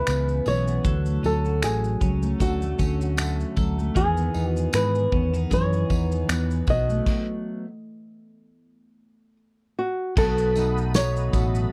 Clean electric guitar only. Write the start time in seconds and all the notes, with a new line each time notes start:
Already playing: E4 G#4
0.07 B3
0.46 G#4
0.85 F#3 A4
1.23 C#4
2.01 C#4
2.40 A4
2.79 C#4
3.17 A3
3.57 A4
3.95 D#3 G#4
4.34 D#4
4.73 G#4
5.12 C#4
5.34 D#4
5.51 G#4
5.90 D#4
6.29 B3
6.67 F#3
10.17 F#3
10.56 A3
10.95 D#4
11.33 A3